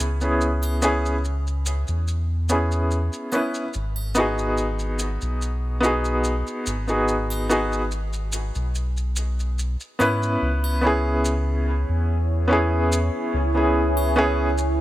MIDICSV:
0, 0, Header, 1, 5, 480
1, 0, Start_track
1, 0, Key_signature, 4, "minor"
1, 0, Tempo, 833333
1, 241, Time_signature, 4, 2, 24, 8
1, 8529, End_track
2, 0, Start_track
2, 0, Title_t, "Ambient pad"
2, 0, Program_c, 0, 92
2, 5997, Note_on_c, 0, 64, 83
2, 5997, Note_on_c, 0, 71, 73
2, 5997, Note_on_c, 0, 73, 80
2, 5998, Note_on_c, 0, 80, 89
2, 8529, Note_off_c, 0, 64, 0
2, 8529, Note_off_c, 0, 71, 0
2, 8529, Note_off_c, 0, 73, 0
2, 8529, Note_off_c, 0, 80, 0
2, 8529, End_track
3, 0, Start_track
3, 0, Title_t, "Felt piano"
3, 0, Program_c, 1, 0
3, 0, Note_on_c, 1, 59, 97
3, 0, Note_on_c, 1, 61, 91
3, 0, Note_on_c, 1, 64, 90
3, 0, Note_on_c, 1, 68, 106
3, 90, Note_off_c, 1, 59, 0
3, 95, Note_off_c, 1, 61, 0
3, 100, Note_off_c, 1, 64, 0
3, 104, Note_off_c, 1, 68, 0
3, 123, Note_on_c, 1, 59, 75
3, 128, Note_on_c, 1, 61, 72
3, 131, Note_on_c, 1, 64, 70
3, 137, Note_on_c, 1, 68, 79
3, 451, Note_off_c, 1, 59, 0
3, 454, Note_off_c, 1, 61, 0
3, 455, Note_off_c, 1, 64, 0
3, 458, Note_off_c, 1, 68, 0
3, 472, Note_on_c, 1, 59, 94
3, 477, Note_on_c, 1, 61, 86
3, 482, Note_on_c, 1, 64, 85
3, 486, Note_on_c, 1, 68, 110
3, 640, Note_off_c, 1, 59, 0
3, 642, Note_off_c, 1, 61, 0
3, 645, Note_off_c, 1, 64, 0
3, 647, Note_off_c, 1, 68, 0
3, 1437, Note_on_c, 1, 59, 71
3, 1440, Note_on_c, 1, 61, 69
3, 1445, Note_on_c, 1, 64, 67
3, 1450, Note_on_c, 1, 68, 79
3, 1891, Note_off_c, 1, 59, 0
3, 1893, Note_off_c, 1, 61, 0
3, 1896, Note_off_c, 1, 64, 0
3, 1898, Note_off_c, 1, 68, 0
3, 1913, Note_on_c, 1, 59, 80
3, 1919, Note_on_c, 1, 61, 74
3, 1922, Note_on_c, 1, 64, 73
3, 1928, Note_on_c, 1, 71, 84
3, 2081, Note_off_c, 1, 59, 0
3, 2083, Note_off_c, 1, 61, 0
3, 2085, Note_off_c, 1, 64, 0
3, 2088, Note_off_c, 1, 71, 0
3, 2389, Note_on_c, 1, 59, 92
3, 2398, Note_on_c, 1, 63, 87
3, 2409, Note_on_c, 1, 66, 85
3, 2417, Note_on_c, 1, 68, 101
3, 3328, Note_off_c, 1, 59, 0
3, 3332, Note_off_c, 1, 63, 0
3, 3338, Note_off_c, 1, 66, 0
3, 3342, Note_off_c, 1, 68, 0
3, 3343, Note_on_c, 1, 59, 99
3, 3354, Note_on_c, 1, 63, 84
3, 3363, Note_on_c, 1, 66, 84
3, 3373, Note_on_c, 1, 68, 100
3, 3928, Note_off_c, 1, 59, 0
3, 3934, Note_off_c, 1, 63, 0
3, 3938, Note_off_c, 1, 66, 0
3, 3943, Note_off_c, 1, 68, 0
3, 3960, Note_on_c, 1, 59, 81
3, 3967, Note_on_c, 1, 63, 75
3, 3971, Note_on_c, 1, 66, 70
3, 3975, Note_on_c, 1, 68, 90
3, 4290, Note_off_c, 1, 59, 0
3, 4293, Note_off_c, 1, 63, 0
3, 4295, Note_off_c, 1, 66, 0
3, 4297, Note_off_c, 1, 68, 0
3, 4317, Note_on_c, 1, 59, 104
3, 4321, Note_on_c, 1, 63, 93
3, 4326, Note_on_c, 1, 66, 91
3, 4332, Note_on_c, 1, 68, 104
3, 4482, Note_off_c, 1, 59, 0
3, 4484, Note_off_c, 1, 63, 0
3, 4487, Note_off_c, 1, 66, 0
3, 4490, Note_off_c, 1, 68, 0
3, 5754, Note_on_c, 1, 59, 96
3, 5759, Note_on_c, 1, 61, 88
3, 5765, Note_on_c, 1, 64, 90
3, 5768, Note_on_c, 1, 71, 106
3, 6210, Note_off_c, 1, 59, 0
3, 6213, Note_off_c, 1, 61, 0
3, 6216, Note_off_c, 1, 64, 0
3, 6217, Note_off_c, 1, 71, 0
3, 6229, Note_on_c, 1, 59, 88
3, 6238, Note_on_c, 1, 61, 83
3, 6248, Note_on_c, 1, 64, 83
3, 6259, Note_on_c, 1, 68, 104
3, 7168, Note_off_c, 1, 59, 0
3, 7172, Note_off_c, 1, 61, 0
3, 7177, Note_off_c, 1, 64, 0
3, 7183, Note_off_c, 1, 68, 0
3, 7186, Note_on_c, 1, 59, 94
3, 7195, Note_on_c, 1, 61, 87
3, 7204, Note_on_c, 1, 64, 91
3, 7215, Note_on_c, 1, 68, 106
3, 7770, Note_off_c, 1, 59, 0
3, 7774, Note_off_c, 1, 61, 0
3, 7779, Note_off_c, 1, 64, 0
3, 7784, Note_off_c, 1, 68, 0
3, 7802, Note_on_c, 1, 59, 79
3, 7806, Note_on_c, 1, 61, 73
3, 7812, Note_on_c, 1, 64, 77
3, 7817, Note_on_c, 1, 68, 94
3, 8131, Note_off_c, 1, 59, 0
3, 8133, Note_off_c, 1, 61, 0
3, 8136, Note_off_c, 1, 64, 0
3, 8139, Note_off_c, 1, 68, 0
3, 8155, Note_on_c, 1, 59, 102
3, 8159, Note_on_c, 1, 61, 96
3, 8163, Note_on_c, 1, 64, 86
3, 8170, Note_on_c, 1, 68, 117
3, 8321, Note_off_c, 1, 59, 0
3, 8324, Note_off_c, 1, 61, 0
3, 8326, Note_off_c, 1, 64, 0
3, 8329, Note_off_c, 1, 68, 0
3, 8529, End_track
4, 0, Start_track
4, 0, Title_t, "Analog synth bass"
4, 0, Program_c, 2, 38
4, 0, Note_on_c, 2, 37, 78
4, 1062, Note_off_c, 2, 37, 0
4, 1087, Note_on_c, 2, 40, 89
4, 1783, Note_off_c, 2, 40, 0
4, 2162, Note_on_c, 2, 32, 99
4, 2984, Note_off_c, 2, 32, 0
4, 3008, Note_on_c, 2, 35, 87
4, 3704, Note_off_c, 2, 35, 0
4, 3840, Note_on_c, 2, 32, 78
4, 4903, Note_off_c, 2, 32, 0
4, 4928, Note_on_c, 2, 35, 97
4, 5623, Note_off_c, 2, 35, 0
4, 5761, Note_on_c, 2, 44, 86
4, 5974, Note_off_c, 2, 44, 0
4, 6002, Note_on_c, 2, 37, 93
4, 6824, Note_off_c, 2, 37, 0
4, 6850, Note_on_c, 2, 40, 96
4, 7544, Note_off_c, 2, 40, 0
4, 7683, Note_on_c, 2, 37, 84
4, 8529, Note_off_c, 2, 37, 0
4, 8529, End_track
5, 0, Start_track
5, 0, Title_t, "Drums"
5, 0, Note_on_c, 9, 82, 81
5, 56, Note_off_c, 9, 82, 0
5, 121, Note_on_c, 9, 82, 37
5, 179, Note_off_c, 9, 82, 0
5, 237, Note_on_c, 9, 82, 53
5, 295, Note_off_c, 9, 82, 0
5, 361, Note_on_c, 9, 81, 68
5, 361, Note_on_c, 9, 82, 34
5, 418, Note_off_c, 9, 82, 0
5, 419, Note_off_c, 9, 81, 0
5, 473, Note_on_c, 9, 82, 97
5, 531, Note_off_c, 9, 82, 0
5, 608, Note_on_c, 9, 82, 38
5, 666, Note_off_c, 9, 82, 0
5, 718, Note_on_c, 9, 82, 47
5, 776, Note_off_c, 9, 82, 0
5, 848, Note_on_c, 9, 82, 32
5, 906, Note_off_c, 9, 82, 0
5, 956, Note_on_c, 9, 82, 87
5, 1013, Note_off_c, 9, 82, 0
5, 1081, Note_on_c, 9, 82, 39
5, 1139, Note_off_c, 9, 82, 0
5, 1197, Note_on_c, 9, 82, 46
5, 1254, Note_off_c, 9, 82, 0
5, 1435, Note_on_c, 9, 82, 90
5, 1493, Note_off_c, 9, 82, 0
5, 1565, Note_on_c, 9, 82, 38
5, 1623, Note_off_c, 9, 82, 0
5, 1677, Note_on_c, 9, 82, 50
5, 1734, Note_off_c, 9, 82, 0
5, 1803, Note_on_c, 9, 82, 37
5, 1860, Note_off_c, 9, 82, 0
5, 1910, Note_on_c, 9, 81, 53
5, 1914, Note_on_c, 9, 82, 74
5, 1968, Note_off_c, 9, 81, 0
5, 1972, Note_off_c, 9, 82, 0
5, 2041, Note_on_c, 9, 82, 37
5, 2098, Note_off_c, 9, 82, 0
5, 2152, Note_on_c, 9, 82, 47
5, 2210, Note_off_c, 9, 82, 0
5, 2280, Note_on_c, 9, 81, 64
5, 2338, Note_off_c, 9, 81, 0
5, 2391, Note_on_c, 9, 82, 90
5, 2448, Note_off_c, 9, 82, 0
5, 2525, Note_on_c, 9, 82, 33
5, 2583, Note_off_c, 9, 82, 0
5, 2635, Note_on_c, 9, 82, 47
5, 2693, Note_off_c, 9, 82, 0
5, 2760, Note_on_c, 9, 82, 30
5, 2818, Note_off_c, 9, 82, 0
5, 2874, Note_on_c, 9, 82, 82
5, 2932, Note_off_c, 9, 82, 0
5, 3004, Note_on_c, 9, 82, 38
5, 3062, Note_off_c, 9, 82, 0
5, 3120, Note_on_c, 9, 82, 45
5, 3178, Note_off_c, 9, 82, 0
5, 3362, Note_on_c, 9, 82, 78
5, 3420, Note_off_c, 9, 82, 0
5, 3484, Note_on_c, 9, 82, 36
5, 3541, Note_off_c, 9, 82, 0
5, 3595, Note_on_c, 9, 82, 53
5, 3652, Note_off_c, 9, 82, 0
5, 3728, Note_on_c, 9, 82, 33
5, 3786, Note_off_c, 9, 82, 0
5, 3839, Note_on_c, 9, 82, 74
5, 3896, Note_off_c, 9, 82, 0
5, 3965, Note_on_c, 9, 82, 34
5, 4022, Note_off_c, 9, 82, 0
5, 4079, Note_on_c, 9, 82, 51
5, 4137, Note_off_c, 9, 82, 0
5, 4207, Note_on_c, 9, 81, 81
5, 4212, Note_on_c, 9, 82, 35
5, 4264, Note_off_c, 9, 81, 0
5, 4269, Note_off_c, 9, 82, 0
5, 4322, Note_on_c, 9, 82, 90
5, 4380, Note_off_c, 9, 82, 0
5, 4450, Note_on_c, 9, 82, 35
5, 4507, Note_off_c, 9, 82, 0
5, 4559, Note_on_c, 9, 82, 50
5, 4616, Note_off_c, 9, 82, 0
5, 4684, Note_on_c, 9, 82, 37
5, 4741, Note_off_c, 9, 82, 0
5, 4794, Note_on_c, 9, 82, 96
5, 4852, Note_off_c, 9, 82, 0
5, 4926, Note_on_c, 9, 82, 37
5, 4984, Note_off_c, 9, 82, 0
5, 5041, Note_on_c, 9, 82, 48
5, 5098, Note_off_c, 9, 82, 0
5, 5167, Note_on_c, 9, 82, 36
5, 5225, Note_off_c, 9, 82, 0
5, 5277, Note_on_c, 9, 82, 86
5, 5334, Note_off_c, 9, 82, 0
5, 5413, Note_on_c, 9, 82, 33
5, 5470, Note_off_c, 9, 82, 0
5, 5522, Note_on_c, 9, 82, 51
5, 5580, Note_off_c, 9, 82, 0
5, 5647, Note_on_c, 9, 82, 35
5, 5705, Note_off_c, 9, 82, 0
5, 5758, Note_on_c, 9, 81, 58
5, 5764, Note_on_c, 9, 82, 76
5, 5816, Note_off_c, 9, 81, 0
5, 5821, Note_off_c, 9, 82, 0
5, 5891, Note_on_c, 9, 82, 33
5, 5949, Note_off_c, 9, 82, 0
5, 6128, Note_on_c, 9, 81, 82
5, 6186, Note_off_c, 9, 81, 0
5, 6480, Note_on_c, 9, 82, 75
5, 6537, Note_off_c, 9, 82, 0
5, 7444, Note_on_c, 9, 82, 91
5, 7502, Note_off_c, 9, 82, 0
5, 8046, Note_on_c, 9, 81, 72
5, 8104, Note_off_c, 9, 81, 0
5, 8398, Note_on_c, 9, 82, 75
5, 8455, Note_off_c, 9, 82, 0
5, 8529, End_track
0, 0, End_of_file